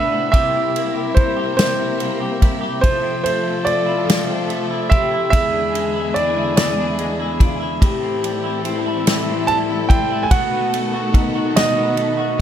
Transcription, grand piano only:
Already playing: E5
0.32 E5
1.15 C5
1.57 C5
2.81 C5
3.24 C5
3.65 D5
4.90 E5
5.30 E5
6.14 D5
6.57 D5
9.47 A5
9.89 G5
10.23 G#5
10.31 F#5
11.56 D#5

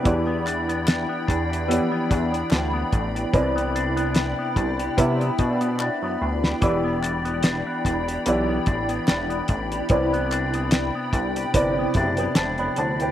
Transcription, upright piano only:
0.03 B3 E4 G4 D5
1.68 B3 E4 G4 D5
3.33 C4 E4 B4 D5
4.97 B3 E4 B4 E5
6.61 B3 E4 G4 D5
8.26 B3 E4 G4 D5
9.89 C4 E4 B4 D5
11.53 C4 E4 B4 D5
11.94 G4 E5
12.18 B4 G5
12.37 C5 A5
12.59 D5 B5
12.78 C5 A5
13.00 B4 G5

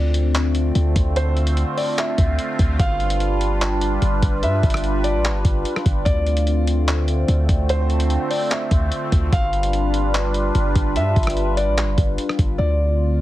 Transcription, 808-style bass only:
Already playing: D2
0.75 D2
0.96 D2
2.18 D2
2.59 D2
2.79 G1
4.02 G1
4.23 G1
4.43 G2
4.63 G1
5.14 A1
5.30 G1
5.45 G1
5.86 G1
6.06 D2
7.28 D2
7.49 D2
8.71 D2
9.12 D2
9.33 G1
10.55 G1
10.76 G1
10.96 G2
11.16 G1
11.67 A1
11.83 G1
11.98 G1
12.39 G1
12.59 D2

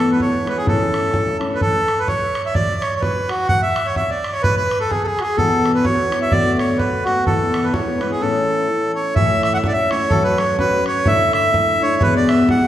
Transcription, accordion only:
Already playing: A4
0.11 B4
0.21 C#5
0.48 B4
0.58 G#4
0.68 A4
1.55 B4
1.61 A4
1.99 B4
2.08 C#5
2.46 E5
2.54 D5
2.81 C#5
2.96 C#5
3.01 B4
3.29 F#4
3.48 F#5
3.62 E5
3.86 C#5
3.96 E5
4.10 D5
4.32 C#5
4.43 B4
4.57 B4
4.80 A4
4.90 G#4
5.04 G#4 A4
5.21 F#4 G#4
5.37 A4
5.75 B4
5.84 C#5
6.22 E5
6.31 D5
6.59 C#5
6.78 B4
7.05 F#4
7.26 A4
7.64 B4
7.73 C#5
8.00 B4
8.11 G#4
8.21 A4
8.95 C#5
9.15 E5
9.43 E5
9.54 E5 F#5
9.67 D5
9.72 E5
9.91 C#5
10.10 A4
10.24 B4
10.37 C#5
10.59 B4
10.87 C#5
11.07 E5
11.34 E5
11.82 C#5
12.02 B4
12.16 D5
12.29 E5
12.50 F#5

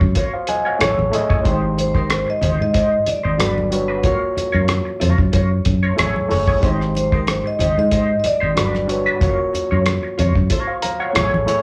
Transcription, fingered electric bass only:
0.01 F#2
0.81 A1
0.99 A1
1.30 F#1
1.46 G#1
2.43 G#1
2.60 G#2
3.07 muted fingered electric bass stroke
3.25 G#1
3.40 G1
4.04 F#1
4.37 muted fingered electric bass stroke
4.54 F#2
5.02 F2
5.19 F#2
5.34 F#2
5.66 F#2
5.99 A1
6.32 F#1
6.63 G#1
7.61 G#1
7.78 G#2
8.25 muted fingered electric bass stroke
8.42 G#1
8.58 G1
9.22 F#1
9.54 muted fingered electric bass stroke
9.72 F#2
10.19 F2
10.36 F#2
11.16 A1
11.34 A1

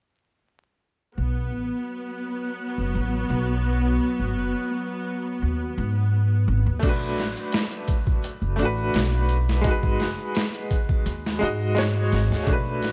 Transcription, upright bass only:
1.18 B1
1.54 A1
2.78 F#1
2.95 A1
3.30 B1
4.19 G#1
4.36 F#1
5.42 D#2
5.78 G#2
6.48 G#1
6.66 D#2
6.83 B1
7.17 A1
8.42 F#1
8.59 A1
8.94 B1
9.83 G#1
10.00 F#1
11.06 D#2
11.42 G#2
12.13 G#1
12.31 D#2
12.47 B1
12.82 A1

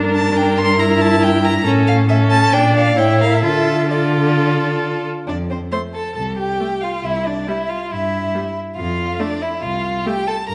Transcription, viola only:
Already playing: D4
0.79 E4
1.66 C#4
2.10 C#4
2.53 D4
2.97 E4
3.44 F4
3.90 F4
5.72 A3
6.60 A3
7.48 G3
8.35 G3
9.19 A3
10.06 A3

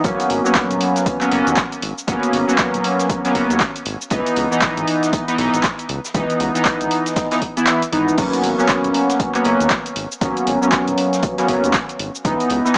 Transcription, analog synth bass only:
0.04 G#1
0.30 G#1
0.71 D#1
1.32 F#1
1.47 D#2
1.82 G#1
2.08 G#1
2.33 G#1
2.74 D#1
3.35 F#1
3.50 D#2
3.86 G#1
4.11 C#2
4.37 C#2
4.77 G#1
5.38 B1
5.54 G#1
5.89 C#2
6.15 C#2
6.40 C#2
6.81 G#1
7.93 G#1
8.18 G#1
8.43 G#1
8.84 D#1
9.45 F#1
9.60 D#2
9.96 G#1
10.21 G#1
10.47 G#1
10.87 D#1
11.48 F#1
11.64 D#2
11.99 G#1
12.25 C#2
12.50 C#2

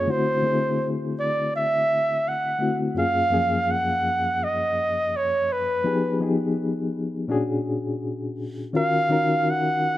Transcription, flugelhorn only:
Already playing: C#5
0.11 C5
1.20 D5
1.56 E5
2.28 F#5
2.99 F5
3.71 F#5
4.44 D#5
5.16 C#5
5.52 B4
8.77 F5
9.50 F#5

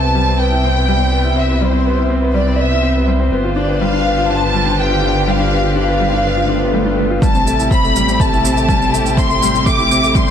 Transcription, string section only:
Already playing: C3 E4 G4 C5
3.32 D3 F4 G4
7.22 C3 A3 E4 G4

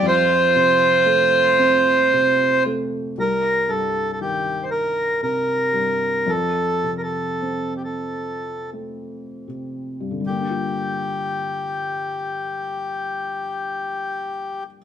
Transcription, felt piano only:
0.03 F2
0.55 C3
1.06 A3
1.59 C4
2.13 C3
2.66 A3
3.18 C2
3.68 G2
4.21 D#3
5.23 C3
5.73 G2
6.26 F2
6.84 C3
7.42 C4
8.73 A3
9.48 C3
10.00 G2
10.11 D3
10.20 G3
10.30 A#3
10.39 D4
10.49 F4

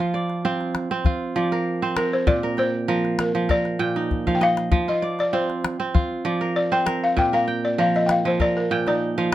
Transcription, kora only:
Already playing: F3 D#5 F5
0.00 F4
0.14 D5
0.45 C4 F4
0.91 C4
1.06 F4
1.36 F3 D5
1.52 A#4
1.82 C4 C5
1.97 A#4
2.27 A#2
2.43 A#4
2.58 G5
2.88 F3 A#4
3.35 F3
3.49 A#4
3.79 A#2 G5
3.96 D#4
4.27 F3 F5
4.41 D#5
4.72 F3
4.88 F4
5.02 D5
5.33 C4 F4
5.80 C4
5.94 F4
6.25 F3 D5
6.41 A#4
6.72 C4 C5
6.86 A#4
7.17 A#2
7.33 A#4
7.48 G5
7.78 F3 A#4
8.25 F3
8.40 A#4
8.71 A#2 G5
8.87 D#4
9.18 F3 F5

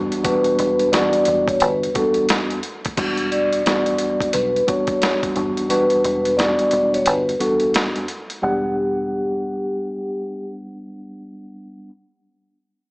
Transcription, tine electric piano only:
Already playing: E2 G3 B3 D4 F#4
0.24 E2 G3 B3 D4 F#4
0.92 E2 G3 B3 D4 F#4
1.94 E2 G3 B3 D4 F#4
2.97 E2 G3 B3 D4 F#4
3.66 E2 G3 B3 D4 F#4
4.67 E2 G3 B3 D4 F#4
5.01 E2 G3 B3 D4 F#4
5.35 E2 G3 B3 D4 F#4
5.69 E2 G3 B3 D4 F#4
6.37 E2 G3 B3 D4 F#4
7.40 E2 G3 B3 D4 F#4
8.42 G3 B3 D4 F#5

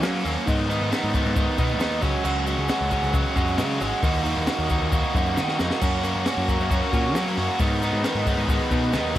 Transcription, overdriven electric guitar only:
0.01 F#3 A#3 C#4
0.24 F#3 A#3 C#4
0.46 D#3 B3 D#4
0.69 D#3 B3 D#4
0.91 D#3 B3 D#4
1.13 D#3 B3 D#4
1.36 D#3 B3 D#4
1.57 D#3 B3 D#4
1.79 D#3 B3 D#4
2.02 F#3 G#3 C#4 F#4
2.24 F#3 G#3 C#4 F#4
2.46 F#3 G#3 C#4 F#4
2.68 F#3 G#3 C#4 F#4
2.90 F#3 G#3 C#4 F#4
3.13 F#3 G#3 C#4 F#4
3.35 F#3 G#3 C#4 F#4
3.57 F#3 G#3 C#4 F#4
3.80 F#3 G#3 C#4 F#4
4.02 D#3 A#3 D#4 F#4
4.24 D#3 A#3 D#4 F#4
4.46 D#3 A#3 D#4 F#4
4.69 D#3 A#3 D#4 F#4
4.92 D#3 A#3 D#4 F#4
5.14 D#3 A#3 D#4 F#4
5.36 D#3 A#3 D#4 F#4
5.59 D#3 A#3 D#4 F#4
5.81 A#3 C#4 F#4
6.03 A#3 C#4 F#4
6.26 A#3 C#4 F#4
6.48 A#3 C#4 F#4
6.71 A#3 C#4 F#4
6.92 A#3 C#4 F#4
7.16 A#3 C#4 F#4
7.37 A#3 C#4 F#4
7.59 D#3 B3 D#4
7.82 D#3 B3 D#4
8.04 D#3 B3 D#4
8.26 D#3 B3 D#4
8.49 D#3 B3 D#4
8.71 D#3 B3 D#4
8.93 D#3 B3 D#4
9.15 F#3

